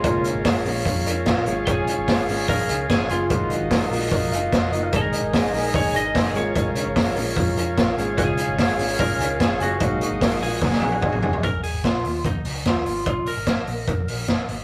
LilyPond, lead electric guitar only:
\new Staff \with { instrumentName = "Lead electric guitar" } { \time 4/4 \key ais \phrygian \tempo 4 = 147 eis'8 r2. r8 | gis'4. r8 ais'4 gis'8 eis'8~ | eis'8 r2. r8 | ais'2 cis''8 dis''4 cis''8~ |
cis''2~ cis''8 r4. | gis'2 ais'4 gis'8 fis'8~ | fis'4 r8 gis'2 r8 | ais'8 gis'8 eis'4 dis'4 eis'4 |
eis'8 ais'2. r8 | }